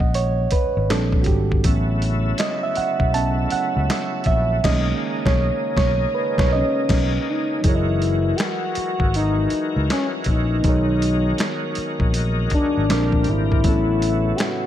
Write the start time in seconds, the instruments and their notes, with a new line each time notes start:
Already playing: reed electric piano A#2 D#3 G#3 C#4 D#5 F#5
0.00 fingered electric bass A#1, kick
0.14 reed electric piano C#5, closed hi-hat
0.51 reed electric piano B4, muted fingered electric bass stroke, kick, closed hi-hat
0.77 fingered electric bass G#1
0.90 fingered electric bass A#1, reed electric piano G3 C4 D4 A4, finger snap, snare, closed hi-hat
1.12 kick
1.22 reed electric piano F#4, closed hi-hat
1.26 fingered electric bass G#1, reed electric piano G4, kick
1.52 kick
1.64 fingered electric bass A1, tonewheel organ C#3 F#3 A3 E4, reed electric piano F#3 B3 C#4, kick, closed hi-hat
2.02 closed hi-hat
2.38 reed electric piano D#5, finger snap, snare, closed hi-hat
2.63 reed electric piano E5
2.76 reed electric piano F#5, muted fingered electric bass stroke, closed hi-hat
3.00 fingered electric bass B1, kick
3.14 reed electric piano F#3 B3 C#4 A5, closed hi-hat
3.50 reed electric piano F#5, muted fingered electric bass stroke, closed hi-hat
3.77 fingered electric bass C#2
3.90 finger snap, snare, closed hi-hat
4.24 fingered electric bass A#1, reed electric piano E5, kick, closed hi-hat
4.64 fingered electric bass B1, reed electric piano D#3 G#3 A#3 C#4 D#5, tonewheel organ G#3 A#3 D#4, kick, snare, crash
5.26 fingered electric bass B1, reed electric piano C#5, kick, snare
5.77 fingered electric bass B1, reed electric piano C#5, kick, snare
6.15 reed electric piano B4
6.38 fingered electric bass B1, reed electric piano C#5, kick, snare
6.53 analog synth lead C#4, reed electric piano D#5
6.89 fingered electric bass B1, kick, snare, crash
7.29 analog synth lead D#4
7.61 fingered electric bass F#1, reed electric piano E3 F#3 G#4, tonewheel organ E3 G#3 F#4 A#4, kick, closed hi-hat
7.67 analog synth lead E4, reed electric piano A#4 C#5
7.75 reed electric piano D#5
8.02 closed hi-hat
8.36 analog synth lead G#4, snare, closed hi-hat
8.41 analog synth lead F#4, finger snap
8.75 muted fingered electric bass stroke, closed hi-hat
9.00 fingered electric bass G#1, kick
9.14 analog synth lead D#4, closed hi-hat
9.50 muted fingered electric bass stroke, closed hi-hat
9.76 fingered electric bass C#2
9.90 analog synth lead C#4, finger snap, snare, closed hi-hat
10.24 fingered electric bass A#1, kick, closed hi-hat
10.29 analog synth lead D#4
10.62 fingered electric bass B1, reed electric piano D#3 F#3 B3, tonewheel organ D#3 F#4, kick, closed hi-hat
10.66 reed electric piano G#4 A#4 C#5
11.02 closed hi-hat
11.38 finger snap, snare, closed hi-hat
11.75 muted fingered electric bass stroke, closed hi-hat
12.00 fingered electric bass A#1, kick
12.14 closed hi-hat
12.50 analog synth lead D4, muted fingered electric bass stroke, kick, closed hi-hat
12.77 fingered electric bass G#1
12.88 fingered electric bass A#1, reed electric piano A#2 G3 C4 D4 A#4, tonewheel organ D3 F3 G3, finger snap, snare, closed hi-hat
13.12 kick
13.24 fingered electric bass G#1, closed hi-hat
13.29 analog synth lead E4
13.52 kick
13.61 fingered electric bass A1, reed electric piano A2 F#3 B3, tonewheel organ C#3 E3 F#3 A3, kick, closed hi-hat
13.67 reed electric piano C#4 A4
14.02 closed hi-hat
14.36 analog synth lead G#4, closed hi-hat
14.40 analog synth lead F#4, finger snap, snare